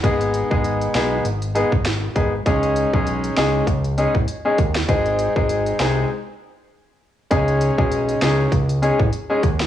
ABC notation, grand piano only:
X:1
M:4/4
L:1/16
Q:"Swing 16ths" 1/4=99
K:G#phr
V:1 name="Grand piano"
[G,B,DG]3 [G,B,DG]3 [G,B,DG]2 z2 [G,B,DG] z3 [G,B,DG] z | [G,CDG]3 [G,CDG]3 [G,CDG]2 z2 [G,CDG] z2 [G,CDG] z2 | [G,^B,DG]3 [G,B,DG]3 [G,B,DG]2 z8 | [G,CDG]3 [G,CDG]3 [G,CDG]2 z2 [G,CDG] z2 [G,CDG] z2 |]